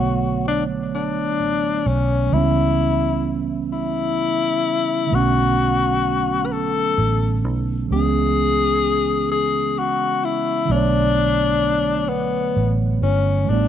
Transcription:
Already playing: fingered electric bass B1, tine electric piano D3 F#3 A3 B3 C#5, tenor saxophone F#4
0.48 tenor saxophone D4
0.95 tenor saxophone D4
1.39 fingered electric bass A1
1.86 fingered electric bass B1, tenor saxophone C#4
2.27 tine electric piano C#3 E3
2.32 fingered electric bass C#2, tine electric piano G3 B3, tenor saxophone E4
2.37 tine electric piano C#4
3.73 tenor saxophone E4
5.06 tine electric piano D3 F#3
5.11 fingered electric bass B1, tine electric piano A3 B3, tenor saxophone F#4
5.16 tine electric piano C#4
6.45 tenor saxophone B4
6.52 tenor saxophone A4
6.98 fingered electric bass A1
7.44 fingered electric bass B1
7.86 tine electric piano C#3 E3
7.91 fingered electric bass C#2, tine electric piano G#3 B3, tenor saxophone G#4
7.96 tine electric piano C#4
9.31 tenor saxophone G#4
9.79 tenor saxophone F#4
10.25 tenor saxophone E4
10.65 tine electric piano D3 F#3
10.70 fingered electric bass B1, tine electric piano A3 B3, tenor saxophone D4
10.75 tine electric piano C#5
12.09 tenor saxophone B3
12.56 fingered electric bass A1
13.02 fingered electric bass G1, tenor saxophone C#4
13.45 tine electric piano E3 G3
13.49 fingered electric bass A1, tine electric piano A3 B3, tenor saxophone D4
13.54 tine electric piano D4

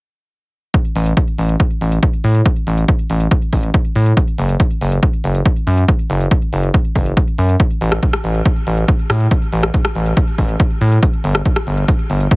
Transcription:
0.74 kick, closed hi-hat
0.85 closed hi-hat
0.96 analog synth bass A1, open hi-hat
1.06 closed hi-hat
1.17 kick, closed hi-hat
1.28 closed hi-hat
1.38 analog synth bass A1, open hi-hat
1.49 closed hi-hat
1.60 kick, closed hi-hat
1.71 closed hi-hat
1.81 analog synth bass A1, open hi-hat
1.92 closed hi-hat
2.03 kick, closed hi-hat
2.13 closed hi-hat
2.24 analog synth bass A2, open hi-hat
2.35 closed hi-hat
2.46 kick, closed hi-hat
2.56 closed hi-hat
2.67 analog synth bass A1, open hi-hat
2.78 closed hi-hat
2.88 kick, closed hi-hat
2.99 closed hi-hat
3.10 analog synth bass A1, open hi-hat
3.20 closed hi-hat
3.31 kick, closed hi-hat
3.42 closed hi-hat
3.53 analog synth bass A1, kick, open hi-hat
3.63 closed hi-hat
3.74 kick, closed hi-hat
3.85 closed hi-hat
3.95 analog synth bass A2, open hi-hat
4.06 closed hi-hat
4.17 kick, closed hi-hat
4.28 closed hi-hat
4.38 analog synth bass F#1, open hi-hat
4.49 closed hi-hat
4.60 kick, closed hi-hat
4.71 closed hi-hat
4.81 analog synth bass F#1, open hi-hat
4.92 closed hi-hat
5.03 kick, closed hi-hat
5.13 closed hi-hat
5.24 analog synth bass F#1, open hi-hat
5.35 closed hi-hat
5.46 kick, closed hi-hat
5.56 closed hi-hat
5.67 analog synth bass F#2, open hi-hat
5.78 closed hi-hat
5.88 kick, closed hi-hat
5.99 closed hi-hat
6.10 analog synth bass F#1, open hi-hat
6.21 closed hi-hat
6.31 kick, closed hi-hat
6.42 closed hi-hat
6.53 analog synth bass F#1, open hi-hat
6.63 closed hi-hat
6.74 kick, closed hi-hat
6.85 closed hi-hat
6.95 analog synth bass F#1, kick, open hi-hat
7.06 closed hi-hat
7.17 kick, closed hi-hat
7.28 closed hi-hat
7.38 analog synth bass F#2, open hi-hat
7.49 closed hi-hat
7.60 kick, closed hi-hat
7.71 closed hi-hat
7.81 analog synth bass A1, open hi-hat
7.92 cross-stick, closed hi-hat
8.03 kick, closed hi-hat
8.13 cross-stick, closed hi-hat
8.24 analog synth bass A1, open hi-hat
8.35 closed hi-hat
8.45 kick, closed hi-hat
8.56 closed hi-hat
8.67 analog synth bass A1, open hi-hat
8.78 closed hi-hat
8.88 kick, closed hi-hat
8.99 closed hi-hat
9.10 analog synth bass A2, cross-stick, open hi-hat
9.21 closed hi-hat
9.31 kick, closed hi-hat
9.42 closed hi-hat
9.53 analog synth bass A1, open hi-hat
9.63 cross-stick, closed hi-hat
9.74 kick, closed hi-hat
9.85 cross-stick, closed hi-hat
9.95 analog synth bass A1, open hi-hat
10.06 closed hi-hat
10.17 kick, closed hi-hat
10.28 closed hi-hat
10.38 analog synth bass A1, kick, open hi-hat
10.49 closed hi-hat
10.60 kick, closed hi-hat
10.71 closed hi-hat
10.81 analog synth bass A2, open hi-hat
10.92 closed hi-hat
11.03 kick, closed hi-hat
11.13 closed hi-hat
11.24 analog synth bass G1, open hi-hat
11.35 cross-stick, closed hi-hat
11.45 kick, closed hi-hat
11.56 cross-stick, closed hi-hat
11.67 analog synth bass G1, open hi-hat
11.78 closed hi-hat
11.88 kick, closed hi-hat
11.99 closed hi-hat
12.10 analog synth bass G1, open hi-hat
12.21 closed hi-hat
12.31 kick, closed hi-hat

